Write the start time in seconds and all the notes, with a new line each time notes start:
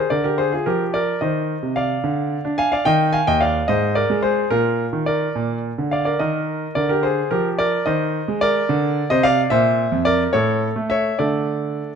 Already playing: G#4 C5
0.10 D3 A#4 D5
0.24 G4 A#4
0.38 G#4 C5
0.52 F4 G#4
0.66 F3 G4 A#4
0.94 A#4 D5
1.21 D#3 C5 D#5
1.63 C3
1.76 D5 F5
2.04 D3
2.45 D4
2.58 F5 G#5
2.72 D5 F5
2.85 D#3 D#5 G5
3.13 F5 G#5
3.27 D#2 D#5 G5
3.41 D5 F5
3.68 G#2 C5 D#5
3.95 A#4 D5
4.10 G#3
4.23 G#4 C5
4.50 A#2 F4 A#4
4.93 D#3
5.06 A#4 D5
5.35 A#2
5.78 D3
5.91 D5 F5
6.05 A#4 D5
6.19 D#3 A#4 D#5
6.75 D3 A#4 D5
6.89 G4 A#4
7.03 G#4 C5
7.31 F3 G4 A#4
7.58 A#4 D5
7.86 D#3 C5 D#5
8.28 G#3
8.41 A#4 D5
8.69 D3
9.10 C3 C5 D#5
9.23 D5 F5
9.50 A#2 C5 E5
9.92 F2
10.05 A#4 D5
10.33 A2 A4 C#5
10.76 A3
10.90 C#5 E5
11.19 D3 A3 D4 A4 D5